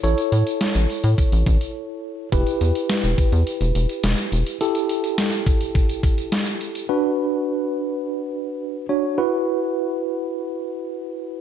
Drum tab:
HH |xxxxxxoxxxxx----|xxxxxxxxxxxxxxxx|xxxxxxxxxxxxxxxx|----------------|
SD |----o-----------|----o-------o---|----o-------o---|----------------|
BD |--------o-o-----|o-----o---------|------o-o-o-----|----------------|

HH |----------------|
SD |----------------|
BD |----------------|